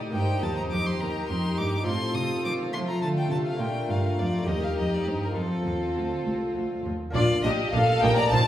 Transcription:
0.00 0.11 A2 soft
0.00 0.13 A2 medium
0.00 0.10 D#4 soft
0.00 0.14 D#4 soft
0.00 0.11 G4 soft
0.00 0.14 D5 soft
0.10 0.41 G2 medium
0.10 1.81 A#3 soft
0.10 1.82 D#4 soft
0.10 1.82 G4 soft
0.10 1.83 G4 soft
0.10 0.44 G5 medium
0.15 0.41 G2 soft
0.15 0.99 D#4 soft
0.15 0.99 C5 soft
0.43 0.69 D#2 soft
0.43 0.70 D#2 medium
0.43 0.56 A5 medium
0.57 0.63 A#5 medium
0.71 0.99 F2 medium
0.71 0.98 F2 soft
0.71 0.88 D6 medium
0.86 1.02 C6 medium
1.00 1.27 D#2 medium
1.00 1.27 D#2 soft
1.00 1.85 D#4 soft
1.00 1.88 A#4 soft
1.00 1.29 A#5 medium
1.30 1.55 F2 soft
1.30 1.56 F2 soft
1.30 1.59 C6 medium
1.58 1.85 G2 medium
1.58 1.84 G2 soft
1.58 1.86 D6 medium
1.83 2.14 A2 medium
1.83 3.55 C4 soft
1.83 2.74 C4 soft
1.83 3.55 D#4 soft
1.83 3.56 F4 soft
1.83 3.60 F4 soft
1.83 2.16 C6 medium
1.88 2.13 A2 soft
1.88 2.72 A4 soft
2.15 2.43 C3 soft
2.15 2.42 C3 soft
2.15 2.44 D#6 medium
2.45 2.72 D#3 soft
2.45 2.71 D#3 soft
2.45 2.53 D6 medium
2.73 3.01 F3 medium
2.73 3.00 F3 soft
2.73 4.48 A3 soft
2.73 3.59 A4 soft
2.73 2.79 C6 medium
2.88 3.01 A#5 medium
3.02 3.29 D3 soft
3.02 3.30 D3 soft
3.02 3.08 A5 medium
3.18 3.31 G5 medium
3.31 3.57 C3 soft
3.31 3.59 C3 medium
3.31 3.37 A5 medium
3.46 3.61 F5 medium
3.56 4.41 A#3 soft
3.56 4.42 D4 soft
3.56 4.43 F4 soft
3.56 3.92 G5 medium
3.60 3.87 A#2 medium
3.60 3.87 A#2 soft
3.60 4.47 F4 soft
3.60 4.47 A#4 soft
3.89 4.16 G2 soft
3.89 4.17 G2 medium
3.89 4.21 F5 medium
4.18 4.45 F2 soft
4.18 4.46 F2 medium
4.18 4.49 D5 medium
4.42 4.74 A#3 soft
4.42 5.32 D#4 soft
4.42 5.33 G4 soft
4.47 4.74 D#2 soft
4.47 4.75 D#2 soft
4.47 5.36 D#4 soft
4.47 5.37 G4 soft
4.47 5.36 A#4 soft
4.47 4.65 D#5 medium
4.64 4.78 F5 medium
4.76 5.03 F2 soft
4.76 5.05 F2 soft
4.76 4.96 D#5 medium
4.94 5.09 D5 soft
5.06 5.33 G2 soft
5.06 5.34 G2 soft
5.06 5.22 C5 medium
5.23 5.37 A#4 medium
5.32 5.63 A3 soft
5.32 5.64 C4 soft
5.32 7.10 F4 soft
5.36 5.64 F2 soft
5.36 5.63 F2 soft
5.36 6.95 C4 soft
5.36 6.92 F4 soft
5.36 6.25 A4 medium
5.36 6.95 A4 soft
5.66 5.93 D#2 soft
5.66 5.94 D#2 soft
5.96 6.23 D2 soft
5.96 6.24 D2 soft
6.26 6.54 C2 soft
6.55 6.82 D2 soft
6.55 6.83 D2 soft
6.86 7.12 D#2 soft
6.86 7.13 D#2 soft
7.10 7.98 A#3 soft
7.10 7.98 D4 medium
7.10 7.99 F4 soft
7.15 7.23 A#1 medium
7.15 7.23 A#2 medium
7.15 7.41 A#2 medium
7.15 7.23 D4 medium
7.15 7.42 F4 medium
7.15 7.23 D5 medium
7.15 7.42 D5 medium
7.43 7.52 A#1 medium
7.43 7.52 A#2 medium
7.43 7.71 A#2 medium
7.43 7.52 D4 medium
7.43 7.73 G4 medium
7.43 7.51 D#5 medium
7.43 7.73 D#5 medium
7.72 7.81 A#1 medium
7.72 8.00 A#2 medium
7.72 7.82 A#2 medium
7.72 7.81 D4 medium
7.72 8.02 A4 medium
7.72 8.02 F5 medium
7.72 8.03 F5 medium
7.99 8.11 A#1 medium
7.99 8.11 A#2 medium
7.99 8.47 A#3 medium
7.99 8.47 D#4 medium
7.99 8.10 D#4 medium
7.99 8.47 G4 medium
7.99 8.18 A#4 medium
7.99 8.16 G5 medium
7.99 8.17 G5 loud
8.04 8.29 A#2 medium
8.16 8.32 D5 medium
8.16 8.33 A#5 medium
8.16 8.32 A#5 loud
8.30 8.40 A#1 medium
8.30 8.40 A#2 medium
8.30 8.47 A#2 medium
8.30 8.39 D#4 medium
8.30 8.40 C5 medium
8.30 8.47 A5 medium

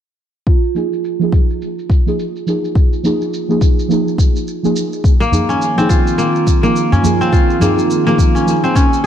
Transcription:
0.47 9.06 F4 medium
0.47 kick loud
0.47 shaker soft
0.64 shaker soft
0.75 1.16 F3 medium
0.75 1.17 A#3 medium
0.75 1.17 D#4 medium
0.75 1.18 G#4 medium
0.75 shaker medium
0.93 shaker soft
1.04 shaker soft
1.19 2.02 F3 medium
1.19 2.02 A#3 medium
1.19 2.03 D#4 medium
1.19 2.04 G#4 loud
1.19 shaker soft
1.32 kick medium
1.32 shaker medium
1.50 shaker soft
1.62 shaker soft
1.79 shaker soft
1.90 kick medium
1.90 shaker medium
2.06 2.23 F3 medium
2.06 2.23 A#3 medium
2.06 2.24 D#4 medium
2.06 2.24 G#4 medium
2.06 shaker soft
2.19 shaker soft
2.36 shaker soft
2.46 3.01 F3 medium
2.46 3.02 A#3 medium
2.46 3.02 D#4 medium
2.46 3.02 G#4 medium
2.46 shaker medium
2.65 shaker soft
2.75 kick loud
2.75 shaker soft
2.93 shaker soft
3.03 3.45 F3 medium
3.03 3.45 A#3 medium
3.03 3.46 D#4 medium
3.03 3.46 G#4 loud
3.03 shaker medium
3.22 shaker soft
3.33 shaker soft
3.49 3.87 F3 medium
3.49 3.87 A#3 medium
3.49 3.87 D#4 medium
3.49 3.87 G#4 medium
3.49 shaker soft
3.61 kick loud
3.61 shaker medium
3.79 shaker soft
3.88 4.59 F3 medium
3.88 4.60 A#3 medium
3.88 4.60 D#4 medium
3.88 shaker soft
3.92 4.61 G#4 medium
4.08 shaker soft
4.18 kick medium
4.18 shaker medium
4.36 shaker soft
4.48 shaker soft
4.63 5.02 F3 medium
4.63 5.03 A#3 medium
4.63 5.03 D#4 medium
4.63 5.03 G#4 medium
4.63 shaker soft
4.76 shaker medium
4.93 shaker soft
5.04 9.06 D#3 medium
5.04 kick loud
5.04 shaker soft
5.16 9.06 A#3 medium
5.20 6.18 A#3 medium
5.20 shaker soft
5.31 5.73 F3 medium
5.31 5.74 A#3 medium
5.31 5.74 D#4 medium
5.31 5.74 G#4 medium
5.31 udu medium
5.31 shaker medium
5.49 5.84 C#4 medium
5.49 shaker soft
5.59 9.06 F4 medium
5.59 shaker soft
5.76 6.59 F3 medium
5.76 6.59 A#3 medium
5.76 6.98 C4 medium
5.76 6.60 D#4 medium
5.76 shaker soft
5.80 6.61 G#4 medium
5.89 7.32 F4 medium
5.89 kick loud
5.89 shaker medium
6.01 9.06 G#4 medium
6.07 shaker soft
6.18 6.63 A#3 medium
6.18 shaker soft
6.36 shaker soft
6.47 kick medium
6.47 shaker medium
6.63 6.80 F3 medium
6.63 7.61 A#3 medium
6.63 6.80 A#3 medium
6.63 6.81 D#4 medium
6.63 6.81 G#4 medium
6.63 shaker soft
6.76 shaker soft
6.92 7.27 C#4 medium
6.92 udu medium
6.92 shaker soft
7.03 7.58 F3 medium
7.03 7.58 A#3 medium
7.03 7.58 D#4 medium
7.03 7.59 G#4 medium
7.03 udu medium
7.03 shaker medium
7.21 8.41 C4 medium
7.21 shaker soft
7.32 8.84 F4 medium
7.32 kick loud
7.32 shaker soft
7.50 shaker soft
7.60 8.02 F3 loud
7.60 8.02 A#3 medium
7.60 8.06 A#3 medium
7.60 8.03 D#4 medium
7.60 8.03 G#4 loud
7.60 udu medium
7.60 shaker medium
7.79 shaker soft
7.90 shaker soft
8.05 8.43 F3 medium
8.05 8.44 A#3 medium
8.05 9.06 A#3 medium
8.05 8.44 D#4 medium
8.05 8.44 G#4 medium
8.05 shaker soft
8.18 kick loud
8.18 shaker medium
8.35 8.70 C#4 medium
8.35 shaker soft
8.45 9.06 F3 medium
8.45 9.06 A#3 medium
8.45 9.06 D#4 medium
8.45 9.06 G#4 medium
8.45 shaker soft
8.64 8.81 C4 medium
8.64 shaker soft
8.75 9.06 C#4 medium
8.75 kick loud
8.75 shaker medium
8.93 shaker soft

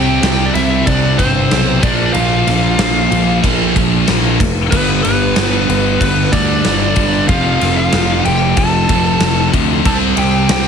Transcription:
0.00 0.19 C2 medium
0.00 1.17 C3 medium
0.00 1.18 G3 medium
0.00 1.17 C4 loud
0.00 0.21 G4 medium
0.00 0.22 G5 loud
0.22 0.50 C2 medium
0.22 0.48 G4 medium
0.22 0.49 G5 loud
0.22 snare loud
0.22 ride loud
0.46 0.55 D4 medium
0.46 0.54 D5 medium
0.54 0.82 C2 loud
0.54 0.85 E4 medium
0.54 0.85 E5 loud
0.54 snare soft
0.54 ride medium
0.87 1.15 C2 loud
0.87 1.18 D4 medium
0.87 1.17 D5 medium
0.87 kick medium
0.87 ride loud
1.18 1.46 G1 medium
1.18 1.49 C3 medium
1.18 1.50 G3 medium
1.18 1.49 C4 medium
1.18 1.80 C4 medium
1.18 1.85 C5 medium
1.18 kick medium
1.18 ride medium
1.50 1.79 B1 loud
1.50 1.81 C3 medium
1.50 1.82 G3 medium
1.50 1.82 C4 medium
1.50 snare loud
1.50 ride medium
1.81 2.10 A#1 medium
1.81 3.41 A#2 loud
1.81 3.42 F3 medium
1.81 3.42 A#3 loud
1.81 2.13 D5 medium
1.81 kick loud
1.81 ride medium
1.86 2.15 D4 medium
2.13 2.42 A#1 loud
2.13 3.41 F4 medium
2.13 3.39 F5 medium
2.13 ride medium
2.47 2.74 A#1 medium
2.47 snare soft
2.47 ride medium
2.78 3.06 A#1 medium
2.78 snare loud
2.78 ride loud
3.11 3.39 A#1 loud
3.11 ride medium
3.43 3.71 A#1 loud
3.43 3.74 A#2 medium
3.43 3.74 F3 medium
3.43 3.73 A#3 medium
3.43 kick medium
3.43 ride loud
3.75 4.03 A#1 medium
3.75 4.39 A#2 medium
3.75 4.38 F3 medium
3.75 4.38 A#3 medium
3.75 kick medium
3.75 ride medium
4.08 4.36 A#1 medium
4.08 4.38 A#2 medium
4.08 4.39 F3 medium
4.08 4.40 A#3 medium
4.08 snare medium
4.08 ride loud
4.40 4.67 F1 medium
4.40 kick loud
4.40 ride medium
4.71 5.00 G1 loud
4.71 6.30 G2 medium
4.71 6.31 D3 medium
4.71 6.32 G3 loud
4.71 5.02 B3 medium
4.71 5.02 B4 loud
4.71 kick loud
4.71 crash loud
5.03 5.32 G1 medium
5.03 5.97 B3 medium
5.03 6.00 B4 medium
5.03 snare soft
5.03 ride medium
5.36 5.64 G1 medium
5.36 snare loud
5.36 ride loud
5.69 5.96 G1 loud
5.69 ride medium
6.01 6.28 G1 loud
6.01 6.31 B3 medium
6.01 6.34 B4 medium
6.01 kick medium
6.01 ride loud
6.32 6.60 D2 loud
6.32 6.63 G2 medium
6.32 6.64 D3 medium
6.32 6.63 G3 medium
6.32 7.25 D4 medium
6.32 7.28 D5 medium
6.32 kick medium
6.32 ride medium
6.65 6.92 G1 medium
6.65 7.27 G2 medium
6.65 7.28 D3 medium
6.65 7.28 G3 medium
6.65 snare loud
6.65 ride medium
6.94 7.24 G1 medium
6.94 7.28 G2 medium
6.94 7.27 D3 medium
6.94 7.26 G3 medium
6.94 kick medium
6.94 ride medium
7.28 7.56 F1 loud
7.28 8.87 F2 medium
7.28 8.88 C3 medium
7.28 8.88 F3 loud
7.28 7.74 F4 medium
7.28 7.76 F5 loud
7.28 kick loud
7.28 ride loud
7.61 7.88 F1 medium
7.61 snare soft
7.61 ride medium
7.77 8.23 F4 medium
7.77 8.22 F5 loud
7.92 8.20 F1 medium
7.92 snare loud
7.92 ride loud
8.25 8.53 F1 loud
8.25 8.56 G4 medium
8.25 8.58 G5 loud
8.25 ride medium
8.57 8.85 F1 medium
8.57 9.51 A4 medium
8.57 9.50 A5 loud
8.57 kick medium
8.57 ride loud
8.89 9.17 F1 medium
8.89 9.19 F2 medium
8.89 9.20 C3 medium
8.89 9.20 F3 loud
8.89 kick loud
8.89 ride medium
9.20 9.48 F1 medium
9.20 9.83 F2 medium
9.20 9.84 C3 medium
9.20 9.84 F3 medium
9.20 snare loud
9.20 ride loud
9.52 9.81 D2 medium
9.52 9.85 F2 medium
9.52 9.84 C3 medium
9.52 9.83 F3 loud
9.52 kick medium
9.52 ride medium
9.85 10.13 C2 loud
9.85 10.68 C3 loud
9.85 10.68 G3 loud
9.85 10.68 C4 medium
9.85 9.95 A4 medium
9.85 9.95 A5 loud
9.85 kick loud
9.85 crash medium
10.17 10.45 C2 medium
10.17 10.47 G4 medium
10.17 10.48 G5 medium
10.17 ride medium
10.48 10.68 C2 medium
10.48 10.68 G4 medium
10.48 10.68 G5 loud
10.48 snare loud
10.48 ride loud

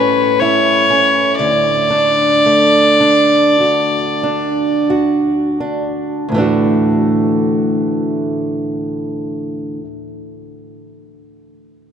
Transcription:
0.00 1.48 A2 medium
0.00 0.89 C#4 soft
0.00 0.41 B4 medium
0.39 1.93 E4 soft
0.39 1.36 C#5 medium
0.90 1.49 C#4 soft
1.37 6.27 D2 soft
1.37 4.84 D5 medium
1.90 3.00 D4 soft
2.46 6.35 A3 soft
3.00 4.23 D4 soft
3.60 4.90 F#4 soft
4.23 5.60 D4 soft
4.90 6.40 F#4 soft
5.60 6.37 D4 soft
6.29 9.79 D2 soft
6.29 9.82 A2 soft
6.34 9.84 E3 soft
6.34 9.86 A3 soft
6.34 9.88 D4 medium
6.40 9.90 F#4 soft

